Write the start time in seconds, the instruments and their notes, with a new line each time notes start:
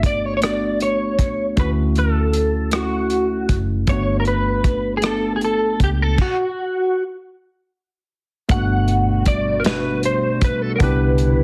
Already playing: fingered electric bass G1, tine electric piano A3 B3 D4 F#4
0.03 clean electric guitar D5, kick, closed hi-hat
0.26 clean electric guitar C#5
0.37 tine electric piano A3, clean electric guitar C#5
0.42 tine electric piano B3 D4 F#4, clean electric guitar D5, cross-stick, closed hi-hat
0.80 clean electric guitar C#5, closed hi-hat
1.19 fingered electric bass C#2, kick, closed hi-hat
1.56 fingered electric bass D2, tine electric piano A3 C#4 E4, clean electric guitar B4, kick, closed hi-hat
1.61 tine electric piano F#4
1.95 clean electric guitar A4, closed hi-hat
2.33 closed hi-hat
2.71 tine electric piano A3 C#4 E4, clean electric guitar F#4, cross-stick, closed hi-hat
2.76 tine electric piano A4
3.10 closed hi-hat
3.49 fingered electric bass F#1, kick, closed hi-hat
3.87 fingered electric bass G1, tine electric piano A3 B3, clean electric guitar C#5, kick, closed hi-hat
3.91 tine electric piano D4 F#4
4.20 clean electric guitar A#4
4.25 clean electric guitar B4, closed hi-hat
4.64 kick, closed hi-hat
4.97 clean electric guitar G#4
5.02 tine electric piano A3 B3, clean electric guitar A4, cross-stick, closed hi-hat
5.06 tine electric piano D4 A4
5.36 clean electric guitar G#4
5.41 clean electric guitar A4, closed hi-hat
5.80 fingered electric bass C#2, clean electric guitar G4, kick, closed hi-hat
6.02 clean electric guitar A4
6.18 clean electric guitar F#4, kick, crash
8.49 fingered electric bass G1, analog synth pad B2 G3 A3 F#4, tine electric piano A3 A#3 D4, clean electric guitar F#5, kick, closed hi-hat
8.54 tine electric piano B3 F#4
8.88 closed hi-hat
9.26 clean electric guitar D5, kick, closed hi-hat
9.60 clean electric guitar A#4
9.64 tine electric piano B2 A3 D4, clean electric guitar B4, snare, closed hi-hat
9.69 tine electric piano F#4
10.03 clean electric guitar C5, closed hi-hat
10.41 fingered electric bass B1, clean electric guitar B4, kick, closed hi-hat
10.62 clean electric guitar A4
10.76 tine electric piano B3, clean electric guitar A#4
10.80 fingered electric bass C2, analog synth pad D3 D4 E4, tine electric piano D4 E4 G4, clean electric guitar B4, kick, closed hi-hat
11.18 closed hi-hat